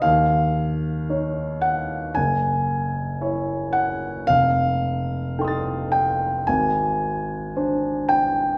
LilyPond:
\new Staff \with { instrumentName = "Grand piano" } { \time 4/4 \key f \mixolydian \tempo 4 = 56 << { ees,4 <ees' des''>4 fis,,4 <e' cis''>4 | f,,4 <ees' a' g'' c''' ees''' a'''>4 aes,,4 <d' c''>4 | } \\ { f''4. ges''8 aes''4. fis''8 | f''4. g''8 aes''4. g''8 | } >> }